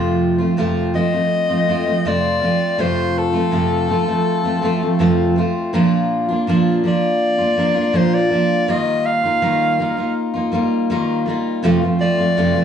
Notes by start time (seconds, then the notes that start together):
Already playing: F2 C3 F3 A3 C4 F4
0.38 F3 A3 C4 F4
0.57 F2 C3 F3 A3 C4 F4
0.94 F3 A3 C4 F4 D#5
1.12 F3 A3 C4 F4
1.49 F3 A3 C4 F4
1.67 F3 A3 C4 F4
1.86 F3 A3 C4 F4
2.05 F2 C3 F3 A3 C4 F4 D5
2.41 F3 A3 C4 F4
2.78 F2 C3 F3 A3 C4 F4 C5
3.18 A4
3.33 F3 A3 C4 F4
3.51 F2 C3 F3 A3 C4 F4
3.88 F3 A3 C4 F4
4.06 F3 A3 C4 F4
4.43 F3 A3 C4 F4
4.62 F3 A3 C4 F4
4.81 F3 A3 C4 F4
4.99 F2 C3 F3 A3 C4 F4
5.36 F3 A3 C4 F4
5.73 A#2 F3 A#3 D4 F4
6.29 A#3 D4 F4
6.47 A#2 F3 A#3 D4 F4
6.84 F3 A#3 D4 F4 D5
7.38 A#3 D4 F4
7.56 F3 A#3 D4 F4
7.74 A#3 D4 F4
7.93 A#2 F3 A#3 D4 F4 C5
8.14 D5
8.30 F3 A#3 D4 F4
8.68 D#3 G3 A#3 D#4 F4 D#5
9.06 F5
9.23 A#3 D#4 F4
9.42 D#3 G3 A#3 D#4 F4
9.79 G3 A#3 D#4 F4
9.97 A#3 D#4 F4
10.34 A#3 D#4 F4
10.52 G3 A#3 D#4 F4
10.90 D#3 G3 A#3 D#4 F4
11.26 G3 A#3 D#4 F4
11.63 F2 C3 F3 A3 C4 F4
11.81 F3 A3 C4 F4
11.99 F3 A3 C4 F4 D5
12.18 F3 A3 C4 F4
12.37 F2 C3 F3 A3 C4 F4
12.55 F3 A3 C4 F4